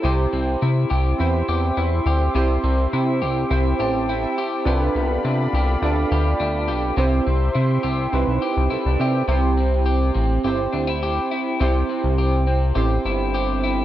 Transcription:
<<
  \new Staff \with { instrumentName = "Analog synth pad" } { \time 4/4 \key c \major \tempo 4 = 104 << { <c'' e'' c'''>1~ | <c'' e'' c'''>1 | <d'' f'' b''>1 | <c'' e'' c'''>1 |
r1 | r1 | } \\ { g'1~ | g'1~ | g'1~ | g'1 |
r1 | r1 | } >> }
  \new Staff \with { instrumentName = "Synth keys" } { \time 4/4 \key c \major << { r1 | r2 r8 a''8 g''16 e''8. | r1 | r2. <a' c''>16 <b' d''>16 <c'' e''>16 <e'' g''>16~ |
<e'' g''>16 r2. r8. | r1 | } \\ { <c' e' g' c''>4. r8 <c' e' g' c''>4. r8 | <c' e' g' c''>4. r8 <c' e' g' c''>4. r8 | <d' f' a' b'>4. r8 <d' f' a' d''>4. r8 | <c' d' e' g' c''>4. r8 <c' ees' e' g' b'>4. r8 |
<c' e' g' c''>4. r8 <c' e' g' c''>4. r8 | <c' e' g' c''>4. r8 <c' e' g' c''>4. r8 | } >> }
  \new Staff \with { instrumentName = "Clean electric guitar" } { \time 4/4 \key c \major <c g'>8 c'8 e'8 g'8 e'8 g'8 e'8 g'8 | <c g'>8 c'8 e'8 g'8 e'8 g'8 e'8 g'8 | <c g'>8 b8 d'8 g'8 d'8 g'8 d'8 g'8 | <c g'>8 c'8 e'8 g'8 e'8 g'8 e'8 g'8 |
<c g'>8 c'8 g'8 c'8 g'8 d'16 e'16 g'8 e'8 | <c g'>8 c'8 g'8 c'8 g'8 e'8 g'8 e'8 | }
  \new Staff \with { instrumentName = "Analog synth bass" } { \clef bass \time 4/4 \key c \major c,8 c,8 c8 c,8 e,8 e,8 e,8 d,8 | c,8 c,8 c8 c,8 c,8 a,,4 r8 | c,8 c,8 c8 c,8 d,8 d,8 d,8 b,,8 | c,8 c,8 c8 c,8 c,16 b,,16 r16 c,16 c,16 c,16 c8 |
c,4. a,,8 g,,8 d,4 r8 | c,8 r16 c,4~ c,16 a,,8 g,,4. | }
>>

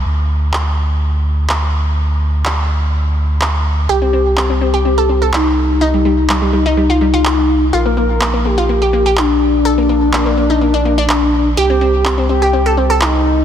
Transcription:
<<
  \new Staff \with { instrumentName = "Analog synth lead" } { \time 4/4 \key c \dorian \tempo 4 = 125 r1 | r1 | g'4. g'4. ees'4~ | ees'1 |
bes'4. g'4. d'4~ | d'1 | g'4. g'4. ees'4 | }
  \new Staff \with { instrumentName = "Synth pluck" } { \time 4/4 \key c \dorian r1 | r1 | g'16 c'16 c'16 r16 c'16 c'16 c'16 g'16 c'16 a'16 c'16 a'4 r16 | ees'16 g16 g16 r16 g16 g16 g16 ees'16 g16 f'16 g16 f'4 r16 |
f'16 bes16 bes16 r16 bes16 bes16 bes16 f'16 bes16 g'16 bes16 g'4 r16 | a'16 bes16 bes16 r16 bes16 bes16 bes16 ees'16 bes16 d'16 bes16 d'4 r16 | g'16 c'16 c'16 r16 c'16 c'16 c'16 g'16 c'16 a'16 c'16 a'4 r16 | }
  \new Staff \with { instrumentName = "Sub bass" } { \clef bass \time 4/4 \key c \dorian d,1~ | d,1 | c,1~ | c,1 |
bes,,1~ | bes,,1 | c,1 | }
  \new DrumStaff \with { instrumentName = "Drums" } \drummode { \time 4/4 r4 hc4 r4 hc4 | r4 hc4 r4 hc4 | r4 hc4 r4 hc4 | r4 hc4 r4 hc4 |
r4 hc4 r4 hc4 | r4 hc4 r4 hc4 | r4 hc4 r4 hc4 | }
>>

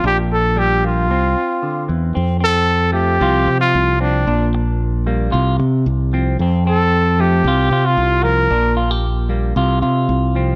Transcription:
<<
  \new Staff \with { instrumentName = "Trumpet" } { \time 4/4 \key f \major \tempo 4 = 113 g'8 a'8 g'8 f'2 r8 | r8 a'4 g'4~ g'16 f'8. d'8~ | d'8 r2. r8 | r8 a'4 g'4~ g'16 f'8. bes'8~ |
bes'8 r2. r8 | }
  \new Staff \with { instrumentName = "Clean electric guitar" } { \time 4/4 \key f \major << { d'4 d'8 bes8 c'2 | c'8 c'4 a8 <f c' f'>4. c'8 | d'4. bes8 f'8 r4 c'8 | c'8 c'4 a8 f'8 f'4. |
d'8 f'16 g'8. bes8 f'8 f'4 c'8 | } \\ { bes,4 g4 r4 d8 e8 | r4. f8 c4. f8 | bes,4. g8 c4. f8 | f,4. f8 c4. f8 |
bes,4. g8 c4. f8 | } >> }
  \new Staff \with { instrumentName = "Fingered electric bass" } { \clef bass \time 4/4 \key f \major bes,,2 c,8 r4 e,8 | f,2 c,8 c8 c,4 | bes,,2 c,8 c8 c,4 | f,2 c,8 c8 c,4 |
bes,,2 c,8 c8 c,4 | }
>>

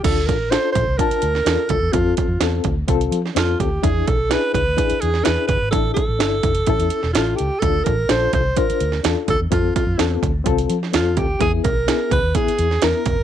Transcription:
<<
  \new Staff \with { instrumentName = "Alto saxophone" } { \time 4/4 \key d \minor \tempo 4 = 127 a'8 bes'8 c''8 c''8 bes'4. a'8 | f'8 f'4 r4. f'8 g'8 | gis'8 a'8 b'8 b'4 gis'8 b'8 b'8 | a'8 a'2~ a'8 f'8 g'8 |
a'8 bes'8 c''8 c''8 bes'4 r8 a'8 | f'8 f'4 r4. f'8 g'8 | gis'8 bes'4 b'8 gis'4 bes'4 | }
  \new Staff \with { instrumentName = "Reed electric piano" } { \time 4/4 \key d \minor <d' f' a'>8 r8 <d' f' a'>8 r8 <d' f' a''>8 r8 <d' f' a'>8 r8 | <c' f' a'>8 r8 <c' f' a'>8 r8 <c' f' a'>8 r8 <c' f' a'>8 r8 | <d' e' gis'>8 r8 <d' e' gis'>8 r8 <d' e' gis'>8 r8 <d' e' gis'>8 r8 | <d' e' a'>8 r8 <d' e' a'>8 r8 <cis' e' a'>8 r8 <cis' e' a'>8 r8 |
<d' f' a'>8 r8 <d' f' a'>8 r8 <d' f' c''>8 r8 <d' f' a'>8 r8 | <c' f' a'>8 r8 <c' f' a'>8 r8 <c' f' a'>8 r8 <c' f' a'>8 r8 | <b e' gis'>8 r8 <b e' gis'>8 r8 <b e' gis'>8 r8 <b e' bes'>8 r8 | }
  \new Staff \with { instrumentName = "Fingered electric bass" } { \clef bass \time 4/4 \key d \minor d,8 a,,8. r16 bes,,16 c,16 r8 d,8 e,16 r16 d,16 e,16 | f,8 r16 f,16 e,8 d,8 c,8 f8 f,8 d,8 | e,8 b,,8. r16 cis,16 d,16 r8 e,8 e,16 r16 fis,,16 gis,,16 | a,,8 r16 a,,16 g,,8 f,,8 a,,16 e,16 r16 e,,16 a,,8 cis,16 r16 |
d,8 a,,8 bes,,8 c,8 r8 d,8 e,16 r16 d,16 e,16 | f,8 r16 f,16 e,8 d,8 c,8 f8 f,8 d,8 | e,8 b,,8. r16 cis,16 ees,16 r8 e,8 e,16 r16 e,,16 fis,,16 | }
  \new DrumStaff \with { instrumentName = "Drums" } \drummode { \time 4/4 <cymc hh bd>8 <hh bd>8 <hh sn>8 <hh bd>8 <hh bd>16 hh16 hh16 sn16 <hh sn>8 <hh bd>8 | <hh bd>8 <hh bd>8 <hh sn>8 <hh bd>8 <hh bd>16 hh16 hh16 sn16 <hh sn>8 <hh bd>8 | <hh bd>8 <hh bd>8 <hh sn>8 <hh bd>8 <hh bd>16 hh16 hh16 sn16 <hh sn>8 <hh bd>8 | <hh bd>8 <hh bd>8 <hh sn>8 <hh bd>16 hh16 <hh bd>16 hh16 hh16 sn16 <hh sn>8 hh8 |
<hh bd>8 <hh bd>8 <hh sn>8 <hh bd>8 <hh bd>16 hh16 hh16 sn16 <hh sn>8 <hh bd>8 | <hh bd>8 <hh bd>8 <hh sn>8 <hh bd>8 <hh bd>16 hh16 hh16 sn16 <hh sn>8 <hh bd>8 | <hh bd>8 <hh bd>8 <hh sn>8 <hh bd>8 <hh bd>16 hh16 hh16 sn16 <hh sn>8 <hh bd>8 | }
>>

